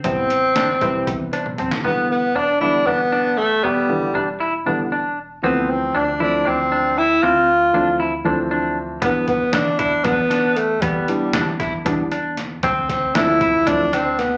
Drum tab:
HH |x-x-x-x-x-x-x-|--------------|--------------|--------------|
SD |----o--------o|--------------|--------------|--------------|
T1 |-----------o--|--------------|--------------|--------------|
T2 |------------o-|--------------|--------------|--------------|
BD |o-----o-o-----|--------------|--------------|--------------|

HH |--------------|x-x-x-x-x-x-x-|x-x-x-x-x-x-x-|x-x-x-x-x-x-x-|
SD |--------------|----o-----o---|----o-o-----o-|--o-o-----o-o-|
T1 |--------------|--------------|--------------|--------------|
T2 |--------------|--------------|--------------|--------------|
BD |--------------|o-o---o-o-----|o-----o-o-----|o-o---o-o-----|